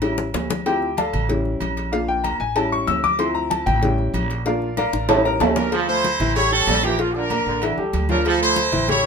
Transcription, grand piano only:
0.02 G3 C#4 E4
0.66 F3 C4 E4 G4 G5
0.98 A4 D5 F5 A5
1.29 G3 C#4 E4
1.92 A#3 D4 F4 F5
2.08 G5
2.24 A#5
2.40 G#5
2.56 G3 C#4 E4 A5
2.72 C#6
2.87 E6
3.04 D6
3.19 F3 C4 E4 C6
3.35 A#5
3.50 A5
3.66 G5
3.82 G3 C#4 E4
4.46 A#3 D4 F4 A#4 D5 F5
4.78 A#4 D5 F5 A#5
5.09 G3 C#4 E4 A4 C#5 E5 A5
5.25 A#4 A#5
5.41 A4 C#5 E5 A5
5.88 A3 A4 C5
6.20 E3 E4 E5
6.36 G3 G4 A4
6.52 G3 G4 A4
6.83 F3 F4 F5
6.99 F3 F4 F5
7.31 A#3 A#4 D5
7.63 E3 E4 E5
7.78 G3 G4 A4
8.09 F3 F4 F5
8.42 A3 A4 C5
8.72 E3 E4 E5
8.88 G3 G4 A4

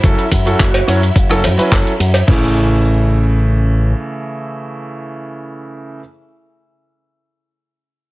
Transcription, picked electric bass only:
0.03 F#1
0.32 F#2
0.60 F#1
0.88 F#2
1.16 F#1
1.44 F#2
1.59 muted picked electric bass stroke
1.72 F#1
2.00 F#2
2.28 A1

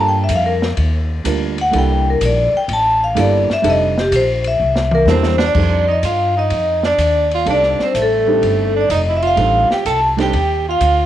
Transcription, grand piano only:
Already playing: G3 A#3 D4 F4 A4
1.24 G3 A#3 D4 F4 A#4
1.71 G3 A#3 D4 E4 A4
3.15 G3 A#3 D4 E4 A4
3.62 G3 C4 D4 D#4 A4
5.07 G3 A#3 D4 E4 A4
5.55 G3 C4 D4 D#4 A4
7.45 G3 C4 D4 D#4 A4
8.26 G3 C4 D4 D#4 G4
9.36 G3 C4 D4 D#4 A4
10.17 G3 C4 D4 D#4 A4

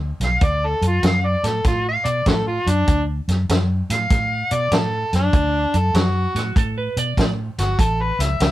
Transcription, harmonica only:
0.25 F5
0.45 D5
0.67 A4
0.87 F4
1.07 F5
1.26 D5
1.46 A4
1.68 F4
1.89 F5
2.08 D5
2.28 E4 F#4 A4
2.48 F4
2.69 D4
3.92 F5
4.54 D5
4.75 A4
5.15 D4
5.77 A4
5.96 F#4
7.60 F#4
7.80 A4
8.01 B4
8.21 E5

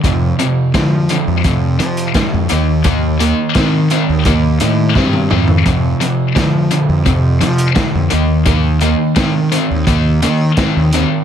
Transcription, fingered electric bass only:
0.05 F2
0.75 F3
1.27 F2
1.79 F3
2.33 F2
2.51 D#2
3.56 D#3
4.09 D#2
4.61 A2
4.96 G2
5.32 F2
5.66 F2
6.37 F3
6.89 F2
7.42 F3
7.94 F2
8.12 D#2
9.17 D#3
9.70 D#2
10.23 D#3
10.76 D#2

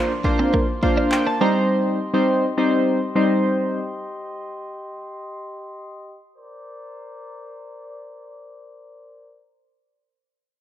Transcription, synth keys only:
Already playing: A#3 D4 F4 C5
0.24 A#3 D4 F4 C5
0.83 A#3 D4 F4 C5 F5
1.12 G5
1.26 A5
1.41 G3 C4 D#4 C5 A#5
2.14 G3 C4 D#4 C5
2.57 G3 C4 D#4 C5
3.15 G3 C4 D#4 C5

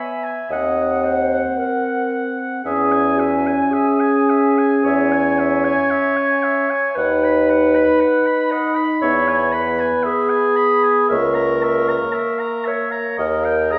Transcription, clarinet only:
Already playing: E5
0.50 D#5
1.04 C5
1.57 A#4
2.64 G#4
3.18 F#4
3.71 G#4
4.84 C#5
6.95 B4
8.51 D#5
9.02 C#5
9.54 B4
10.05 G#4
11.09 A#4
12.68 C#5
13.19 A#4
13.71 G#4

